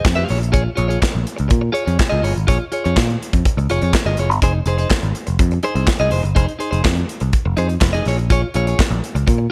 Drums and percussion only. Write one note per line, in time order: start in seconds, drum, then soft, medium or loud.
0.05 kick loud
0.05 snare loud
0.05 clap medium
0.28 open hi-hat medium
0.43 closed hi-hat soft
0.54 kick loud
0.54 closed hi-hat medium
0.77 closed hi-hat medium
0.90 closed hi-hat soft
1.02 kick medium
1.02 snare loud
1.02 clap medium
1.27 closed hi-hat medium
1.38 closed hi-hat soft
1.50 kick loud
1.50 closed hi-hat medium
1.75 closed hi-hat soft
1.87 closed hi-hat soft
1.99 kick loud
1.99 snare medium
1.99 clap medium
2.24 open hi-hat medium
2.37 closed hi-hat soft
2.48 kick loud
2.48 closed hi-hat medium
2.72 closed hi-hat medium
2.85 closed hi-hat soft
2.97 kick loud
2.97 snare loud
2.97 clap medium
3.10 closed hi-hat soft
3.22 closed hi-hat medium
3.33 kick medium
3.33 closed hi-hat soft
3.45 kick loud
3.45 closed hi-hat medium
3.58 closed hi-hat soft
3.69 closed hi-hat medium
3.81 closed hi-hat soft
3.93 kick medium
3.93 snare loud
3.93 clap medium
4.17 closed hi-hat medium
4.31 closed hi-hat soft
4.42 kick medium
4.42 closed hi-hat medium
4.66 closed hi-hat medium
4.78 closed hi-hat soft
4.90 kick medium
4.90 snare loud
4.90 clap medium
5.03 closed hi-hat soft
5.15 closed hi-hat medium
5.27 closed hi-hat soft
5.39 kick loud
5.39 closed hi-hat medium
5.51 closed hi-hat soft
5.63 closed hi-hat soft
5.75 closed hi-hat soft
5.87 kick loud
5.87 snare loud
5.87 clap medium
5.99 closed hi-hat soft
6.11 open hi-hat medium
6.25 closed hi-hat soft
6.36 kick medium
6.36 closed hi-hat medium
6.49 closed hi-hat soft
6.60 closed hi-hat medium
6.73 closed hi-hat soft
6.85 kick loud
6.85 snare loud
6.85 clap medium
6.96 closed hi-hat soft
7.09 closed hi-hat medium
7.20 closed hi-hat soft
7.33 kick loud
7.33 closed hi-hat medium
7.57 closed hi-hat soft
7.69 closed hi-hat soft
7.81 kick loud
7.81 snare loud
7.81 clap medium
7.94 closed hi-hat soft
8.05 snare soft
8.05 open hi-hat medium
8.19 closed hi-hat soft
8.30 kick loud
8.30 closed hi-hat medium
8.54 closed hi-hat medium
8.67 closed hi-hat soft
8.79 kick loud
8.79 snare loud
8.79 clap medium
8.91 closed hi-hat soft
9.04 closed hi-hat medium
9.16 closed hi-hat soft
9.28 kick loud
9.28 closed hi-hat medium